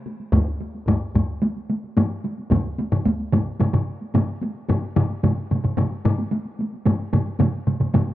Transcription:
0.06 taiko high
0.20 taiko high
0.32 taiko, taiko low-mid, taiko high
0.61 taiko high
0.75 taiko high
0.87 taiko, taiko low-mid, taiko high
1.01 taiko high
1.15 taiko, taiko low-mid, taiko high
1.42 taiko high
1.56 taiko high
1.70 taiko high
1.84 taiko high
1.97 taiko low-mid, taiko high
2.11 taiko high
2.24 taiko high
2.38 taiko high
2.51 taiko, taiko low-mid, taiko mid, taiko high
2.65 taiko high
2.78 taiko high
2.92 taiko low-mid, taiko mid, taiko high
3.06 taiko, taiko high
3.19 taiko high
3.33 taiko, taiko low-mid, taiko mid, taiko high
3.60 taiko low-mid, taiko mid, taiko high
3.73 taiko low-mid, taiko mid, taiko high
4.01 taiko high
4.14 taiko low-mid, taiko mid, taiko high
4.28 taiko high
4.41 taiko high
4.55 taiko high
4.69 taiko low-mid, taiko mid, taiko high
4.83 taiko high
4.96 taiko low-mid, taiko mid, taiko high
5.10 taiko high
5.23 taiko low-mid, taiko mid, taiko high
5.37 taiko high
5.51 taiko low-mid, taiko mid, taiko high
5.64 taiko low-mid, taiko mid, taiko high
5.77 taiko low-mid, taiko mid, taiko high
5.92 taiko high
6.05 taiko low-mid, taiko mid, taiko high
6.18 taiko high
6.32 taiko high
6.45 taiko high
6.59 taiko high
6.73 taiko high
6.86 taiko low-mid, taiko mid, taiko high
7.00 taiko high
7.13 taiko low-mid, taiko mid, taiko high
7.26 taiko high
7.39 taiko low-mid, taiko mid, taiko high
7.53 taiko high
7.67 taiko low-mid, taiko mid, taiko high
7.80 taiko low-mid, taiko mid, taiko high
7.94 taiko low-mid, taiko mid, taiko high
8.08 taiko high

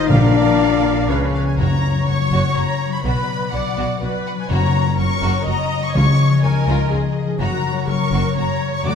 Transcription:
Already playing: G#2 D#3 C4 D#4 G#4 C5 D#5 G#5
0.00 D#4
0.09 A#1 A#2 D4 A#4 D5 F5
0.22 F3
0.34 A#3
0.46 F3
0.59 F4
0.71 A#4
0.83 F4
0.95 F5
1.08 C#2 C#3 C#4 B4 C#5 F5
1.21 G#3
1.33 B3 F5
1.46 F4 G#5
1.58 F#1 F#2 F#4 C#5 A#5
1.75 C#3
1.91 F#3
2.08 F#1 F#2 C#4 F#4 C#6
2.24 F#4
2.32 F#1 F#2 F#4
2.40 C#4
2.56 F#1 F#2 F#4 A#5
2.73 C#4
2.89 F#3
2.93 B5
3.04 B1 B2 F#4 B4 D5 B5
3.21 B3
3.37 F#3
3.52 B1 B2 D4 F#4 D5 F#5
3.70 F#4
3.77 B1 B2 F#4
3.86 D4
4.02 B1 B2 F#4 B4
4.18 D4
4.27 F#5
4.35 F#3
4.40 G#5
4.50 F#1 F#2 F#4 C#5 A#5
4.68 C#3
4.84 F#3
4.98 F#1 F#2 C#4 F#4 A#4 C#6
5.16 F#4
5.23 F#1 F#2 F#4
5.32 C#4
5.45 F#1 F#2 F#4 D#5 A#5
5.64 C#4
5.80 F#3
5.85 C#6
5.95 C#2 C#3 F4 C#5 D#5 C#6
6.12 C#4
6.28 F3
6.43 C#2 D#4 F4 A#4 G#5
6.61 G#4
6.67 C#2 F4
6.77 D#4
6.92 C#2 F4 G#4
7.09 D#4
7.25 F3
7.39 F#1 F#2 F#4 C#5 A#5
7.57 C#3
7.73 F#3
7.88 F#1 F#2 C#4 F#4 A#4 C#6
8.04 F#4
8.12 F#1 F#2 F#4
8.21 C#4
8.36 F#1 F#2 F#4 C#5 A#5
8.53 C#4
8.70 F#3
8.75 C#6
8.85 D2 D3 F#4 D5 D6

